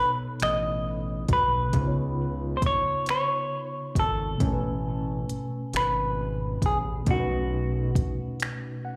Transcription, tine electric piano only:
Already playing: B2 B3 D#4 A4 C#5
1.69 C#3 B3
1.75 D#4 F4
1.81 C5
1.87 C#5
4.35 B2 A3
4.41 C#4 G#5
4.47 A#4
4.53 B4
7.01 B2 A3
7.07 C#4 D#4
7.14 A#4
7.20 B4
8.85 F#5

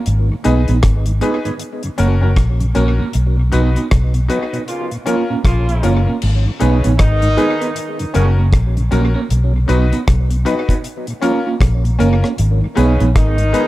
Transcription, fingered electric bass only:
0.07 G#1
0.46 B1
0.69 A#1
0.84 G#1
2.00 F#1
2.37 A#1
2.76 A#1
3.15 B1
3.54 B1
3.92 B1
5.45 A#1
5.85 F#1
6.23 G#1
6.62 B1
6.85 A#1
7.00 G#1
8.16 F#1
8.53 A#1
8.93 A#1
9.31 B1
9.69 B1
10.08 B1
11.61 A#1
12.01 F#1
12.39 G#1
12.78 B1
13.01 A#1
13.16 G#1

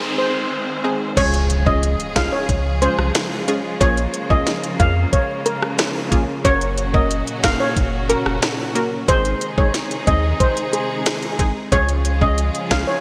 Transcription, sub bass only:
1.17 C#2
2.16 C2
2.49 C#2
2.98 C2
3.81 A#1
4.30 A#1
4.80 F2
6.12 A#1
6.45 F#1
7.44 F1
7.77 F#1
8.26 F1
9.08 G#1
9.58 G#1
10.07 D#2
11.39 G#1
11.72 C#2
12.71 C2

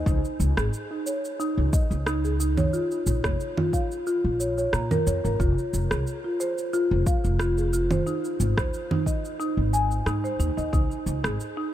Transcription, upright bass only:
0.06 C#2
0.40 C#2
0.57 G#1
1.58 C#2
1.91 C#2
3.06 A#1
3.24 F1
4.24 A#1
4.73 A#2
5.07 F2
5.25 G#1
5.40 F1
5.73 F1
5.91 C2
6.91 F1
7.25 F1
8.40 G#1
8.58 D#2
9.57 G#1
10.06 G#2
10.39 D#2
10.57 D#2
10.73 C#2
11.06 C#2
11.24 G#1

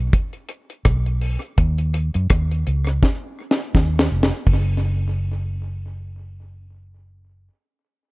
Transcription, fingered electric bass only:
0.86 B1
1.58 D#2
2.15 F#2
2.31 D#2
2.67 C#2
3.75 D#2
4.12 F1
4.47 F#1

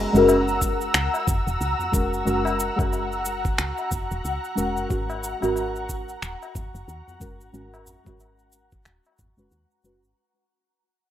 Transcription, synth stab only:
Already playing: G#3 C#4 F#4 A#4
0.13 G#3 C#4 F#4
0.17 A#4
1.92 G#3 C#4 F#4 A#4
2.25 G#3 C#4 F#4 A#4
2.76 G#3 C#4 F#4
2.80 A#4
4.55 G#3 C#4 F#4 A#4
4.89 G#3 C#4 F#4 A#4
5.40 G#3 C#4 F#4
5.44 A#4
7.20 G#3 C#4 F#4 A#4
7.53 G#3 C#4 F#4 A#4
8.05 G#3 C#4 F#4 A#4
9.37 G#3 C#4 F#4 B4
9.83 G#3 C#4 F#4 B4

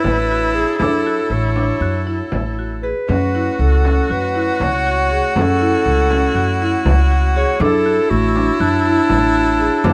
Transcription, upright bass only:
0.05 A1
0.80 F#2
1.30 A1
1.80 F#2
2.32 A1
3.09 F#2
3.59 C#2
4.10 F#2
4.60 C#2
5.36 F#2
5.86 C#2
6.35 F#2
6.85 C#2
7.60 F#2
8.11 A1
8.60 F#2
9.10 A1
9.84 F#2

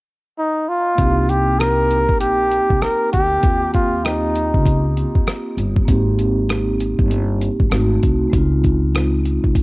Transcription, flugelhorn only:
0.38 D#4
0.69 F4
1.30 G4
1.60 A#4
2.21 G4
2.82 A#4
3.12 G4
3.74 F4
4.05 D#4

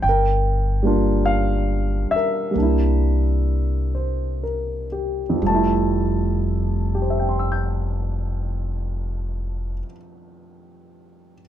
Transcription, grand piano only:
0.02 G5
0.09 A#4
0.83 G3 A#3 D4
0.87 F4
1.26 F5
2.11 E5
2.16 A#4
2.51 G3 A#3
2.58 D4
2.62 E4
3.95 C5
4.43 A#4
4.92 G4
5.29 F2
5.36 F3
5.42 G3
5.47 A3 A5
5.55 E4
6.95 G4
7.02 C5
7.10 E5
7.19 G5
7.29 C6
7.39 E6
7.52 G6

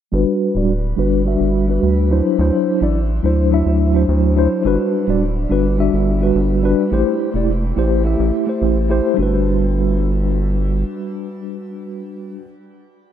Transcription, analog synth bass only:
0.13 G1
0.55 D1
0.98 G1
1.40 G1
1.83 D2
2.39 D2
2.81 A1
3.24 D2
3.66 D2
4.08 D2
4.65 G1
5.08 D1
5.50 G1
5.93 G1
6.35 G1
6.92 A1
7.34 E1
7.77 A1
8.19 A1
8.62 A1
9.18 G1

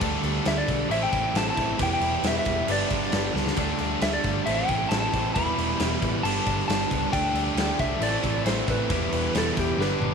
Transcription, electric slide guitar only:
0.48 E5
0.58 D5
0.92 E5
1.03 G5
1.37 A5
1.50 A5
1.83 G5
1.93 G5
2.27 E5
2.39 E5
2.71 D5
4.02 E5
4.13 D5
4.46 E5
4.55 G5
4.89 A5
5.00 A5
5.34 B5
6.23 A5
6.68 A5
7.13 G5
7.80 E5
8.03 D5
8.47 C5
8.70 B4
9.38 A4
9.60 G4
9.82 B4

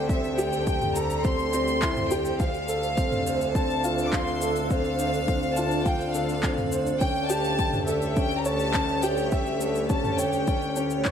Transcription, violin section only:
0.09 E5
0.38 G5
0.97 A#5
1.25 C6
2.12 G5
2.40 F5
3.56 A5
4.06 D6
4.13 C6
4.71 F5
5.56 A5
5.86 G5
6.15 F5
7.02 G5
7.30 A5
7.88 E5
8.17 G5
8.38 A#5
8.46 A5
9.04 G5
9.32 E5
9.90 A5
10.19 G5

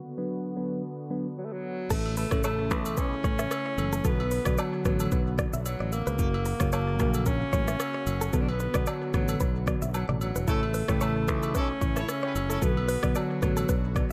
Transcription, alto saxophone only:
1.37 F#3
1.45 A3
1.53 F#3
1.91 A3
2.18 A3
2.44 A3
2.98 C#4
4.05 B3
4.58 F#3
4.85 F#3
5.66 F#3
5.93 A#3
6.73 A#3
7.26 C#4
8.34 B3
8.42 D4
8.49 B3
8.88 F#3
9.14 F#3
9.95 F#3
10.22 F#3
10.48 A3
11.02 A3
11.56 C#4
12.03 E4
12.09 C#4
12.63 B3
13.17 F#3
13.43 F#3

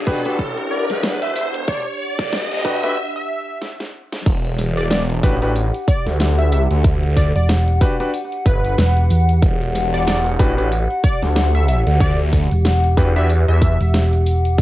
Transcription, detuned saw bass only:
Already playing: B1
0.26 A1
0.90 E1
2.19 E1
2.52 D2
2.65 D2
4.26 E1
5.23 A1
6.06 D2
6.50 C#2
6.71 D2
8.46 G1
9.42 E1
10.39 A1
11.23 D2
11.87 D2
12.97 E2
13.49 E2
14.59 E1

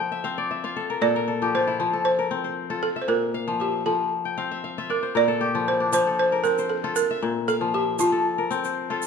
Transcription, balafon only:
Already playing: A4
1.02 D5
1.55 C5
2.05 C5
2.83 A4
3.02 C5
3.08 A#4
3.61 G4
3.86 A4
4.90 A#4
5.17 D5
5.68 C5
5.94 C5
6.19 C5
6.44 A#4
6.69 A4
6.96 A#4
7.48 A4
7.74 G4
8.00 F4

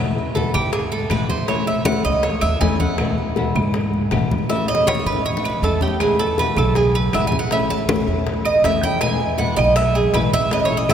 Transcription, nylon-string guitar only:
Already playing: B2 E3 G#3 B3
0.00 E4
0.15 G#3 B3 E4
0.34 B2 E3 G#3 B3 E4
0.53 G#3 B3 E4
0.72 muted nylon-string guitar stroke
1.10 B2 E3 G#3 B3 E4
1.28 G#3 B3 E4
1.47 E3 A3 C#4 E4
1.66 A3 C#4 E4
1.84 E3 A3 C#4 E4
2.04 A3 C#4 E4
2.23 muted nylon-string guitar stroke
2.61 E3 A3 C#4 E4
2.80 A3 C#4 E4
3.00 B2 E3 G#3 B3 E4
3.18 G#3 B3 E4
3.36 B2 E3 G#3 B3 E4
3.55 G#3 B3 E4
3.74 muted nylon-string guitar stroke
4.11 B2 E3 G#3 B3 E4
4.31 G#3 B3 E4
4.49 E3 A3 C#4 E4
4.68 A3 C#4 E4
4.87 E3 A3 C#4 E4
5.06 A3 C#4 E4
5.24 muted nylon-string guitar stroke
5.62 E3 A3 C#4 E4
5.81 A3 C#4 E4
6.00 B2 E3 G#3 B3 E4
6.20 G#3 B3 E4
6.38 B2 E3 G#3 B3 E4
6.57 G#3 B3 E4
6.76 muted nylon-string guitar stroke
7.13 B2 E3 G#3 B3 E4
7.32 G#3 B3 E4
7.50 E3 A3 C#4 E4
7.69 A3 C#4 E4
7.88 E3 A3 C#4 E4
8.07 A3 C#4 E4
8.26 muted nylon-string guitar stroke
8.63 E3 A3 C#4 E4
8.83 A3 C#4 E4
9.01 B2 E3 G#3 B3 E4
9.21 G#3 B3 E4
9.40 B2 E3 G#3 B3 E4
9.59 G#3 B3 E4
9.77 muted nylon-string guitar stroke
10.14 B2 E3 G#3 B3 E4
10.32 G#3 B3 E4
10.51 E3 A3 C#4 E4
10.71 A3 C#4 E4
10.89 E3 A3 C#4 E4

